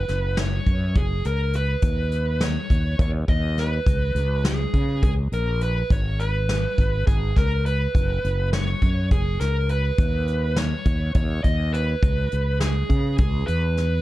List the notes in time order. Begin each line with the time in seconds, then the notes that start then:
Already playing: B4
0.08 F#1, snare, closed hi-hat
0.37 C#5, snare, closed hi-hat
0.66 F#2, kick, closed hi-hat
0.95 F#1 G#4, kick, closed hi-hat
1.25 C#2 A#4, closed hi-hat
1.53 B4, closed hi-hat
1.82 D#2, kick, closed hi-hat
2.12 closed hi-hat
2.41 C#5, snare, closed hi-hat
2.70 D#2, kick, closed hi-hat
2.99 D#2 C#5, kick, closed hi-hat
3.28 D#2 D#5, kick, closed hi-hat
3.58 B4, snare, closed hi-hat
3.87 C#2, kick, closed hi-hat
4.15 C#2, closed hi-hat
4.45 G#4, snare, closed hi-hat
4.74 C#3, kick, closed hi-hat
5.02 C#2 G#4, kick, closed hi-hat
5.32 A#1 A#4, closed hi-hat
5.61 B4, closed hi-hat
5.90 G#1 C#5, kick, closed hi-hat
6.20 B4, closed hi-hat
6.49 snare, closed hi-hat
6.78 G#1, kick, closed hi-hat
7.07 G#1 G#4, kick, closed hi-hat
7.36 C#2 A#4, kick, snare, closed hi-hat
7.66 B4, closed hi-hat
7.95 F#1, kick, closed hi-hat
8.24 F#1, closed hi-hat
8.53 C#5, snare, closed hi-hat
8.82 F#2, kick, closed hi-hat
9.11 F#1 G#4, kick, closed hi-hat
9.40 C#2 A#4, snare, closed hi-hat
9.69 B4, closed hi-hat
9.98 D#2, kick, closed hi-hat
10.27 closed hi-hat
10.56 C#5, snare, closed hi-hat
10.85 D#2, kick, closed hi-hat
11.14 D#2 C#5, kick, closed hi-hat
11.44 D#2 D#5, kick, closed hi-hat
11.73 B4, closed hi-hat
12.02 C#2, kick, closed hi-hat
12.32 C#2, closed hi-hat
12.60 G#4, snare, closed hi-hat
12.89 C#3, kick, closed hi-hat
13.18 C#2 G#4, kick, closed hi-hat
13.47 E2 B4, closed hi-hat
13.77 snare, closed hi-hat